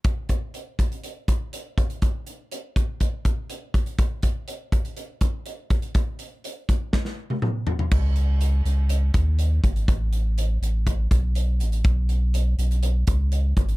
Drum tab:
CC |----------------|----------------|----------------|----------------|
HH |x-x-x-xxx-x-x-xx|x-x-x-x-x-x-x-xx|x-x-x-xxx-x-x-xx|x-x-x-x---------|
SD |----------------|----------------|----------------|--------oo------|
T1 |----------------|----------------|----------------|-----------o----|
T2 |----------------|----------------|----------------|------------o---|
FT |----------------|----------------|----------------|--------------oo|
BD |o-o---o---o---o-|o-----o-o-o---o-|o-o---o---o---o-|o-----o-o-------|

CC |x---------------|----------------|----------------|
HH |--x-x-x-x-x-x-xx|x-x-x-x-x-x-x-xx|x-x-x-xxx-x-x-xx|
SD |----------------|----------------|----------------|
T1 |----------------|----------------|----------------|
T2 |----------------|----------------|----------------|
FT |----------------|----------------|----------------|
BD |o---------o---o-|o-------o-o-----|o---------o---o-|